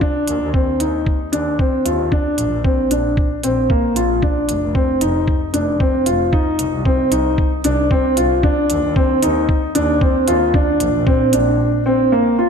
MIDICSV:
0, 0, Header, 1, 4, 480
1, 0, Start_track
1, 0, Tempo, 526316
1, 13, Time_signature, 4, 2, 24, 8
1, 11394, End_track
2, 0, Start_track
2, 0, Title_t, "Upright piano"
2, 0, Program_c, 0, 0
2, 10, Note_on_c, 0, 62, 90
2, 434, Note_off_c, 0, 62, 0
2, 489, Note_on_c, 0, 60, 75
2, 702, Note_off_c, 0, 60, 0
2, 729, Note_on_c, 0, 63, 75
2, 1153, Note_off_c, 0, 63, 0
2, 1207, Note_on_c, 0, 62, 77
2, 1421, Note_off_c, 0, 62, 0
2, 1447, Note_on_c, 0, 60, 77
2, 1661, Note_off_c, 0, 60, 0
2, 1690, Note_on_c, 0, 65, 65
2, 1902, Note_off_c, 0, 65, 0
2, 1932, Note_on_c, 0, 62, 87
2, 2355, Note_off_c, 0, 62, 0
2, 2411, Note_on_c, 0, 60, 74
2, 2623, Note_off_c, 0, 60, 0
2, 2653, Note_on_c, 0, 62, 71
2, 3075, Note_off_c, 0, 62, 0
2, 3135, Note_on_c, 0, 60, 77
2, 3345, Note_off_c, 0, 60, 0
2, 3377, Note_on_c, 0, 58, 78
2, 3586, Note_off_c, 0, 58, 0
2, 3614, Note_on_c, 0, 65, 73
2, 3824, Note_off_c, 0, 65, 0
2, 3853, Note_on_c, 0, 62, 82
2, 4275, Note_off_c, 0, 62, 0
2, 4329, Note_on_c, 0, 60, 78
2, 4542, Note_off_c, 0, 60, 0
2, 4570, Note_on_c, 0, 63, 72
2, 4994, Note_off_c, 0, 63, 0
2, 5049, Note_on_c, 0, 62, 74
2, 5262, Note_off_c, 0, 62, 0
2, 5290, Note_on_c, 0, 60, 80
2, 5502, Note_off_c, 0, 60, 0
2, 5528, Note_on_c, 0, 65, 73
2, 5741, Note_off_c, 0, 65, 0
2, 5769, Note_on_c, 0, 63, 90
2, 6193, Note_off_c, 0, 63, 0
2, 6252, Note_on_c, 0, 60, 83
2, 6464, Note_off_c, 0, 60, 0
2, 6491, Note_on_c, 0, 63, 77
2, 6914, Note_off_c, 0, 63, 0
2, 6973, Note_on_c, 0, 62, 85
2, 7184, Note_off_c, 0, 62, 0
2, 7216, Note_on_c, 0, 60, 89
2, 7426, Note_off_c, 0, 60, 0
2, 7451, Note_on_c, 0, 65, 78
2, 7663, Note_off_c, 0, 65, 0
2, 7692, Note_on_c, 0, 62, 90
2, 8115, Note_off_c, 0, 62, 0
2, 8173, Note_on_c, 0, 60, 85
2, 8384, Note_off_c, 0, 60, 0
2, 8412, Note_on_c, 0, 63, 81
2, 8835, Note_off_c, 0, 63, 0
2, 8892, Note_on_c, 0, 62, 89
2, 9103, Note_off_c, 0, 62, 0
2, 9133, Note_on_c, 0, 60, 81
2, 9344, Note_off_c, 0, 60, 0
2, 9373, Note_on_c, 0, 65, 81
2, 9584, Note_off_c, 0, 65, 0
2, 9615, Note_on_c, 0, 62, 90
2, 10036, Note_off_c, 0, 62, 0
2, 10093, Note_on_c, 0, 60, 84
2, 10304, Note_off_c, 0, 60, 0
2, 10335, Note_on_c, 0, 62, 77
2, 10756, Note_off_c, 0, 62, 0
2, 10815, Note_on_c, 0, 60, 85
2, 11025, Note_off_c, 0, 60, 0
2, 11055, Note_on_c, 0, 58, 89
2, 11265, Note_off_c, 0, 58, 0
2, 11296, Note_on_c, 0, 65, 82
2, 11394, Note_off_c, 0, 65, 0
2, 11394, End_track
3, 0, Start_track
3, 0, Title_t, "Double bass section"
3, 0, Program_c, 1, 48
3, 251, Note_on_c, 1, 39, 95
3, 352, Note_off_c, 1, 39, 0
3, 373, Note_on_c, 1, 39, 91
3, 573, Note_off_c, 1, 39, 0
3, 731, Note_on_c, 1, 39, 86
3, 932, Note_off_c, 1, 39, 0
3, 1210, Note_on_c, 1, 39, 84
3, 1411, Note_off_c, 1, 39, 0
3, 1690, Note_on_c, 1, 39, 91
3, 1892, Note_off_c, 1, 39, 0
3, 2170, Note_on_c, 1, 34, 93
3, 2271, Note_off_c, 1, 34, 0
3, 2292, Note_on_c, 1, 34, 85
3, 2492, Note_off_c, 1, 34, 0
3, 2651, Note_on_c, 1, 34, 87
3, 2852, Note_off_c, 1, 34, 0
3, 3131, Note_on_c, 1, 34, 81
3, 3332, Note_off_c, 1, 34, 0
3, 3611, Note_on_c, 1, 34, 89
3, 3812, Note_off_c, 1, 34, 0
3, 4091, Note_on_c, 1, 29, 93
3, 4192, Note_off_c, 1, 29, 0
3, 4209, Note_on_c, 1, 29, 86
3, 4411, Note_off_c, 1, 29, 0
3, 4571, Note_on_c, 1, 29, 89
3, 4772, Note_off_c, 1, 29, 0
3, 5048, Note_on_c, 1, 29, 90
3, 5251, Note_off_c, 1, 29, 0
3, 5530, Note_on_c, 1, 29, 86
3, 5731, Note_off_c, 1, 29, 0
3, 6011, Note_on_c, 1, 36, 88
3, 6112, Note_off_c, 1, 36, 0
3, 6131, Note_on_c, 1, 36, 92
3, 6332, Note_off_c, 1, 36, 0
3, 6490, Note_on_c, 1, 36, 96
3, 6691, Note_off_c, 1, 36, 0
3, 6971, Note_on_c, 1, 36, 93
3, 7172, Note_off_c, 1, 36, 0
3, 7451, Note_on_c, 1, 36, 91
3, 7652, Note_off_c, 1, 36, 0
3, 7932, Note_on_c, 1, 39, 98
3, 8032, Note_off_c, 1, 39, 0
3, 8052, Note_on_c, 1, 39, 92
3, 8252, Note_off_c, 1, 39, 0
3, 8411, Note_on_c, 1, 39, 95
3, 8612, Note_off_c, 1, 39, 0
3, 8891, Note_on_c, 1, 39, 92
3, 9092, Note_off_c, 1, 39, 0
3, 9373, Note_on_c, 1, 39, 99
3, 9573, Note_off_c, 1, 39, 0
3, 9855, Note_on_c, 1, 34, 103
3, 9954, Note_off_c, 1, 34, 0
3, 9973, Note_on_c, 1, 34, 94
3, 10173, Note_off_c, 1, 34, 0
3, 10331, Note_on_c, 1, 34, 106
3, 10532, Note_off_c, 1, 34, 0
3, 11394, End_track
4, 0, Start_track
4, 0, Title_t, "Drums"
4, 12, Note_on_c, 9, 36, 97
4, 103, Note_off_c, 9, 36, 0
4, 251, Note_on_c, 9, 42, 57
4, 342, Note_off_c, 9, 42, 0
4, 492, Note_on_c, 9, 36, 100
4, 583, Note_off_c, 9, 36, 0
4, 731, Note_on_c, 9, 42, 58
4, 822, Note_off_c, 9, 42, 0
4, 971, Note_on_c, 9, 36, 91
4, 1062, Note_off_c, 9, 36, 0
4, 1212, Note_on_c, 9, 42, 61
4, 1303, Note_off_c, 9, 42, 0
4, 1452, Note_on_c, 9, 36, 96
4, 1543, Note_off_c, 9, 36, 0
4, 1693, Note_on_c, 9, 42, 61
4, 1784, Note_off_c, 9, 42, 0
4, 1932, Note_on_c, 9, 36, 100
4, 2023, Note_off_c, 9, 36, 0
4, 2170, Note_on_c, 9, 42, 60
4, 2262, Note_off_c, 9, 42, 0
4, 2412, Note_on_c, 9, 36, 99
4, 2504, Note_off_c, 9, 36, 0
4, 2653, Note_on_c, 9, 42, 57
4, 2744, Note_off_c, 9, 42, 0
4, 2893, Note_on_c, 9, 36, 99
4, 2984, Note_off_c, 9, 36, 0
4, 3133, Note_on_c, 9, 42, 57
4, 3224, Note_off_c, 9, 42, 0
4, 3373, Note_on_c, 9, 36, 96
4, 3464, Note_off_c, 9, 36, 0
4, 3613, Note_on_c, 9, 42, 60
4, 3704, Note_off_c, 9, 42, 0
4, 3853, Note_on_c, 9, 36, 99
4, 3944, Note_off_c, 9, 36, 0
4, 4092, Note_on_c, 9, 42, 60
4, 4183, Note_off_c, 9, 42, 0
4, 4332, Note_on_c, 9, 36, 88
4, 4423, Note_off_c, 9, 36, 0
4, 4571, Note_on_c, 9, 42, 62
4, 4663, Note_off_c, 9, 42, 0
4, 4811, Note_on_c, 9, 36, 91
4, 4903, Note_off_c, 9, 36, 0
4, 5050, Note_on_c, 9, 42, 56
4, 5142, Note_off_c, 9, 42, 0
4, 5291, Note_on_c, 9, 36, 93
4, 5382, Note_off_c, 9, 36, 0
4, 5529, Note_on_c, 9, 42, 61
4, 5620, Note_off_c, 9, 42, 0
4, 5771, Note_on_c, 9, 36, 99
4, 5862, Note_off_c, 9, 36, 0
4, 6010, Note_on_c, 9, 42, 61
4, 6101, Note_off_c, 9, 42, 0
4, 6251, Note_on_c, 9, 36, 87
4, 6343, Note_off_c, 9, 36, 0
4, 6491, Note_on_c, 9, 42, 60
4, 6582, Note_off_c, 9, 42, 0
4, 6731, Note_on_c, 9, 36, 87
4, 6823, Note_off_c, 9, 36, 0
4, 6970, Note_on_c, 9, 42, 56
4, 7062, Note_off_c, 9, 42, 0
4, 7212, Note_on_c, 9, 36, 90
4, 7303, Note_off_c, 9, 36, 0
4, 7451, Note_on_c, 9, 42, 59
4, 7542, Note_off_c, 9, 42, 0
4, 7692, Note_on_c, 9, 36, 97
4, 7783, Note_off_c, 9, 36, 0
4, 7932, Note_on_c, 9, 42, 58
4, 8023, Note_off_c, 9, 42, 0
4, 8172, Note_on_c, 9, 36, 94
4, 8263, Note_off_c, 9, 36, 0
4, 8413, Note_on_c, 9, 42, 61
4, 8505, Note_off_c, 9, 42, 0
4, 8653, Note_on_c, 9, 36, 95
4, 8744, Note_off_c, 9, 36, 0
4, 8893, Note_on_c, 9, 42, 63
4, 8984, Note_off_c, 9, 42, 0
4, 9132, Note_on_c, 9, 36, 91
4, 9224, Note_off_c, 9, 36, 0
4, 9372, Note_on_c, 9, 42, 61
4, 9463, Note_off_c, 9, 42, 0
4, 9612, Note_on_c, 9, 36, 101
4, 9704, Note_off_c, 9, 36, 0
4, 9852, Note_on_c, 9, 42, 59
4, 9943, Note_off_c, 9, 42, 0
4, 10093, Note_on_c, 9, 36, 98
4, 10184, Note_off_c, 9, 36, 0
4, 10332, Note_on_c, 9, 42, 62
4, 10423, Note_off_c, 9, 42, 0
4, 11394, End_track
0, 0, End_of_file